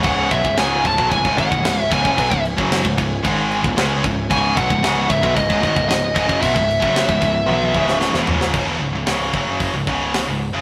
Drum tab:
CC |x-x-x-x-x-x-x-x-|x-x-x-x-x-x-x-x-|x-x-x-x-x-x-x-x-|x-x-x-x---------|
HH |----------------|----------------|----------------|----------------|
SD |----o-------o---|----o-------o---|----o-------o---|----o------ooo-o|
T1 |----------------|----------------|----------------|--------oo------|
FT |----------------|----------------|----------------|--------------o-|
BD |o-oo--oooooo--oo|oo-o-oo-o--o--o-|o-oo--oooooo--oo|oo-o-oo---o-----|

CC |x---------------|
HH |----o---o---o---|
SD |----o-------o---|
T1 |----------------|
FT |----------------|
BD |o-----o-o-o-----|